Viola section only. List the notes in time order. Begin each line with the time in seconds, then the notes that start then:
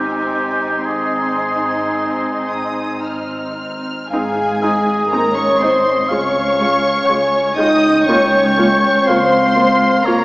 Already playing: C4
0.87 C4
4.12 C4 D#4
4.61 C4 D#4
5.11 C4 D#4
5.61 C4 D#4
6.10 G#3 F4
6.59 G#3 F4
7.09 G#3 F4
7.57 G#3 F4
8.08 A#3 F4
8.58 A#3 F4
9.07 A#3 F4
9.56 A#3 F4
10.06 A#3 F4